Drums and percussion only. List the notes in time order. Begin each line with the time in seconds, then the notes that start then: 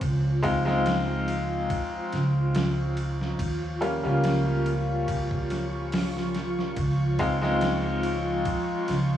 0.01 kick, ride
0.43 kick, ride
0.68 snare
0.86 snare, ride
1.28 ride
1.70 kick, ride
2.13 snare, ride
2.55 snare, ride
2.97 ride
3.21 snare
3.39 kick, ride
3.82 ride
4.24 snare, ride
4.66 ride
5.08 kick, ride
5.31 kick
5.50 snare, ride
5.92 snare, open hi-hat
6.17 snare
6.35 snare, ride
6.59 snare
6.76 kick, ride
7.19 kick, ride
7.43 snare
7.61 snare, ride
8.03 ride
8.45 kick, ride
8.88 snare, ride